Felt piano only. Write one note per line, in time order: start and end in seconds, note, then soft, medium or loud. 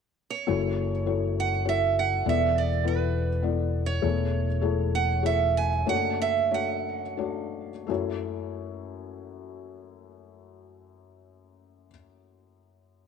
0.47 2.22 F#1 soft
0.47 2.22 F#2 soft
0.47 0.91 F#3 medium
0.47 0.91 E4 medium
0.47 0.91 A4 medium
0.47 0.91 C#5 medium
1.06 1.50 F#3 medium
1.06 1.50 E4 soft
1.06 1.50 A4 soft
1.06 1.50 C#5 medium
1.65 2.09 F#3 soft
1.65 2.09 E4 soft
1.65 2.09 A4 soft
1.65 2.09 C#5 soft
2.26 4.00 E2 soft
2.26 4.00 E3 soft
2.26 2.69 B3 medium
2.26 2.69 E4 medium
2.26 2.69 A4 medium
2.26 2.70 D5 medium
2.84 3.28 B3 soft
2.84 3.28 E4 soft
2.84 3.28 A4 soft
2.84 3.28 B4 soft
3.42 3.87 B3 soft
3.42 3.87 E4 soft
3.42 3.87 A4 soft
3.42 3.88 D5 soft
4.02 5.82 E2 soft
4.02 5.82 E3 soft
4.02 4.46 A3 medium
4.02 4.46 E4 medium
4.02 4.47 G#4 medium
4.02 4.47 C#5 medium
4.61 5.07 A3 medium
4.61 5.07 E4 medium
4.61 5.07 G#4 medium
4.61 5.07 C#5 medium
5.23 5.69 A3 soft
5.23 5.69 E4 soft
5.23 5.69 G#4 soft
5.23 5.69 C#5 soft
5.86 7.85 F#1 soft
5.86 7.85 F#2 soft
5.86 6.33 A3 medium
5.86 6.33 D4 soft
5.86 6.34 F#4 medium
5.86 6.34 C#5 medium
6.51 7.00 A3 soft
6.51 7.00 D4 soft
6.51 7.00 F#4 soft
6.51 7.00 C#5 medium
7.17 7.69 A3 soft
7.17 7.69 D4 soft
7.17 7.69 F#4 soft
7.17 7.69 C#5 soft
7.87 11.89 F#2 medium
7.87 11.87 A3 medium
7.87 11.88 E4 soft
7.87 11.90 F#4 medium
7.91 11.91 C#5 medium